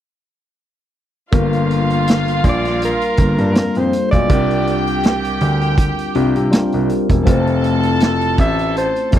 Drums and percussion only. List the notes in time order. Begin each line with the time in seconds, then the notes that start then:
1.32 kick, closed hi-hat
1.53 closed hi-hat
1.71 closed hi-hat
1.90 closed hi-hat
2.07 snare, closed hi-hat
2.28 closed hi-hat
2.44 kick, closed hi-hat
2.65 snare, closed hi-hat
2.82 closed hi-hat
3.01 closed hi-hat
3.17 kick, closed hi-hat
3.38 closed hi-hat
3.55 snare, closed hi-hat
3.75 closed hi-hat
3.93 closed hi-hat
4.13 kick, closed hi-hat
4.29 kick, closed hi-hat
4.51 closed hi-hat
4.67 closed hi-hat
4.87 closed hi-hat
5.03 snare, closed hi-hat
5.24 closed hi-hat
5.41 closed hi-hat
5.61 closed hi-hat
5.78 kick, closed hi-hat
5.99 closed hi-hat
6.15 closed hi-hat
6.36 closed hi-hat
6.53 snare, closed hi-hat
6.72 closed hi-hat
6.89 closed hi-hat
7.09 kick, closed hi-hat
7.26 kick, closed hi-hat
7.47 closed hi-hat
7.64 closed hi-hat
7.83 closed hi-hat
8.00 snare, closed hi-hat
8.21 closed hi-hat
8.38 kick, closed hi-hat
8.59 closed hi-hat
8.77 closed hi-hat
8.96 closed hi-hat
9.12 kick, closed hi-hat